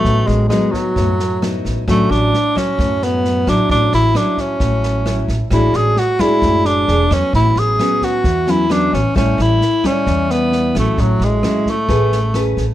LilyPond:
<<
  \new Staff \with { instrumentName = "Tenor saxophone" } { \time 4/4 \key a \major \tempo 4 = 132 a8 gis8 gis8 fis2 r8 | a8 d'4 cis'4 b4 d'8 | d'8 e'8 d'8 cis'2 r8 | e'8 gis'8 fis'8 e'4 d'4 cis'8 |
e'8 gis'4 fis'4 e'8 d'8 cis'8 | cis'8 e'4 cis'4 b4 a8 | fis8 gis4 a2 r8 | }
  \new Staff \with { instrumentName = "Nylon-string guitar" } { \time 4/4 \key a \major << { <fis b dis'>4 <fis b dis'>4. r8 <fis b dis'>4 | <fis cis' d'>4 r8 <fis cis'>2 <fis cis' e'>8~ | <fis cis' e'>4 <fis cis' e'>2 <fis cis' e'>8 r8 | <gis d' fis'>4 r8 <gis d' fis'>4. <d' gis' cis''>8 <fis b cis'>8~ |
<fis b cis'>4 <fis b cis'>4 r8 <fis b cis'>8 <fis b cis'>8 r8 | <g cis' e'>4 r8 <g cis' e'>2 <fis cis' e'>8~ | <fis cis' e'>4 <fis cis' e'>8 r8 <cis' gis' b'>8 r8 <cis' gis' b'>8 r8 | } \\ { a,2 a,2 | a,2 a,2 | a,2 a,2 | a,2 a,4 r4 |
a,2 e2 | a,2 e2 | a,2 a2 | } >> }
  \new Staff \with { instrumentName = "Upright bass" } { \clef bass \time 4/4 \key a \major a,,8 a,,8 r4 fis,4. a,,16 r16 | a,,8 a,,8 r4 fis,4. a,,16 r16 | a,,8 a,,8 r4 a,,4. a,,16 r16 | a,,8 a,,8 r4 fis,,4 e,,8 e,16 r16 |
a,,8 a,,8 r4 e,4. a,,16 r16 | a,,8 a,,8 r4 e,4. a,,16 r16 | a,,8 a,,8 r4 a,,4. a,,16 r16 | }
  \new DrumStaff \with { instrumentName = "Drums" } \drummode { \time 4/4 <bd sn>8 sn8 <ss sn>8 <bd sn>8 <bd sn>8 sn8 <ss sn>8 <bd sn>8 | <bd ss sn>8 sn8 sn8 <bd ss sn>8 <bd sn>8 sn8 sn8 <bd ss sn>8 | <bd sn>8 sn8 <ss sn>8 <bd sn>8 <bd sn>8 sn8 <ss sn>8 <bd sn>8 | <bd ss sn>8 sn8 sn8 <bd ss sn>8 <bd sn>8 sn8 sn8 <bd ss sn>8 |
<bd sn>8 sn8 <ss sn>8 <bd sn>8 <bd sn>8 sn8 <ss sn>8 <bd sn>8 | <bd ss sn>8 sn8 sn8 <bd ss sn>8 <bd sn>8 sn8 sn8 <bd ss sn>8 | <bd sn>8 sn8 <ss sn>8 <bd sn>8 <bd sn>8 sn8 <ss sn>8 <bd sn>8 | }
>>